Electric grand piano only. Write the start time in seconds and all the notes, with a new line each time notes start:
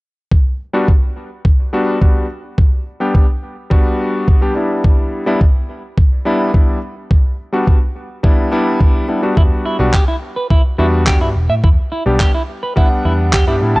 0.73 G3 B3 D4 F#4
1.73 G3 B3 D4 F#4
2.01 G3 B3 D4 F#4
3.00 G3 B3 D4 G4
3.70 G3 B3 D4 F#4
4.41 G3 B3 D4 G4
4.55 G3 B3 D4 E4
5.26 G3 B3 D4 E4
6.25 G3 B3 D4 E4
7.53 G3 B3 D4 F#4
8.23 G3 B3 D4 E4
8.52 G3 B3 D4 E4
9.08 G3 B3 D4 E4
9.22 G3 B3 D4 F#4
9.79 G3 B3 D4 F#4
10.78 G3 B3 D4 F#4
11.07 G3 B3 D4 F#4
12.06 G3 B3 D4 G4
12.76 G3 B3 D4 F#5
13.47 G3 B3 D4 G4
13.61 G3 B3 D4 E4